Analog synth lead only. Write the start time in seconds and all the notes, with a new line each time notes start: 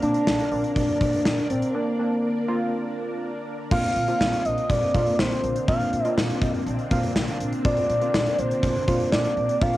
0.02 D4
0.76 D4
1.50 C4
1.74 A#3
3.71 F5
4.45 D#5
4.69 D5
5.19 C5
5.68 F5
7.65 D5
8.39 C5
9.12 D5
9.61 F5